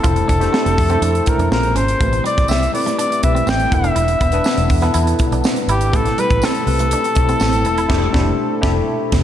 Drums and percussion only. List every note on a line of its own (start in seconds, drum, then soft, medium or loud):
0.04 kick loud
0.04 closed hi-hat medium
0.16 closed hi-hat medium
0.29 kick medium
0.29 closed hi-hat medium
0.41 snare soft
0.41 closed hi-hat medium
0.54 snare loud
0.66 closed hi-hat medium
0.78 kick medium
0.78 snare soft
0.78 open hi-hat medium
0.90 closed hi-hat medium
1.02 closed hi-hat medium
1.15 closed hi-hat soft
1.26 kick medium
1.26 closed hi-hat medium
1.39 closed hi-hat soft
1.52 snare loud
1.63 closed hi-hat soft
1.76 closed hi-hat medium
1.88 closed hi-hat medium
2.01 kick loud
2.01 closed hi-hat medium
2.13 closed hi-hat medium
2.26 closed hi-hat medium
2.38 kick loud
2.38 snare soft
2.38 closed hi-hat medium
2.48 snare loud
2.48 tambourine medium
2.63 closed hi-hat medium
2.75 open hi-hat medium
2.87 snare soft
2.87 closed hi-hat medium
2.99 closed hi-hat medium
3.12 closed hi-hat medium
3.23 kick medium
3.23 closed hi-hat medium
3.36 closed hi-hat soft
3.47 snare loud
3.47 tambourine medium
3.60 closed hi-hat soft
3.72 kick loud
3.72 closed hi-hat medium
3.84 closed hi-hat medium
3.96 closed hi-hat medium
4.08 closed hi-hat medium
4.21 kick medium
4.21 closed hi-hat medium
4.32 closed hi-hat medium
4.44 snare loud
4.44 tambourine medium
4.57 closed hi-hat medium
4.70 kick medium
4.70 open hi-hat medium
4.82 snare soft
4.82 closed hi-hat medium
4.94 closed hi-hat medium
5.07 closed hi-hat medium
5.19 kick medium
5.19 closed hi-hat medium
5.32 closed hi-hat soft
5.44 snare loud
5.44 tambourine medium
5.56 closed hi-hat soft
5.69 closed hi-hat medium
5.81 closed hi-hat medium
5.93 kick loud
5.93 closed hi-hat medium
6.05 snare soft
6.05 closed hi-hat medium
6.18 closed hi-hat medium
6.30 kick medium
6.30 closed hi-hat medium
6.42 snare loud
6.42 tambourine medium
6.55 closed hi-hat medium
6.67 open hi-hat medium
6.79 closed hi-hat medium
6.91 closed hi-hat medium
7.04 closed hi-hat soft
7.15 kick medium
7.15 closed hi-hat medium
7.29 closed hi-hat soft
7.40 snare loud
7.40 tambourine medium
7.53 closed hi-hat medium
7.65 closed hi-hat medium
7.78 closed hi-hat medium
7.90 kick loud
7.90 snare loud
7.90 crash medium
8.14 kick loud
8.14 snare loud
8.63 kick loud
8.63 snare loud
9.12 kick loud
9.12 snare medium
9.12 crash medium